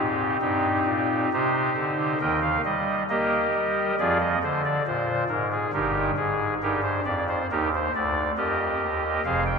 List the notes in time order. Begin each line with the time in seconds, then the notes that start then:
Already playing: G#2 C4 D#4 G4
0.41 G2 C4 D#4 G4
0.86 A#2
1.33 C3 D#4 G4 C5
1.77 D3
2.20 D#2 D#3 A#4 D#5 G5
2.42 F5
2.65 G3 D#5
3.09 A#3 G4 A#4 D#5
3.54 G3
3.99 F2 F3 F4 G#4 D5
4.20 D#5
4.43 D3 C5
4.65 D5
4.87 A#2 C5
5.29 G#2 A#4
5.52 G#4
5.73 G1 G2 D#4 G4 A#4
6.17 G#2 G#4
6.62 G2 D#4 G4 A#4
6.82 C5
7.05 F2 D5
7.29 C5
7.51 D#2 D#4 G4 A#4
7.75 C5
7.95 D2 D5
8.37 F2 G4 A#4 D#5
8.81 D#2
9.25 F1 F2 G#4 C5 F5
9.46 G5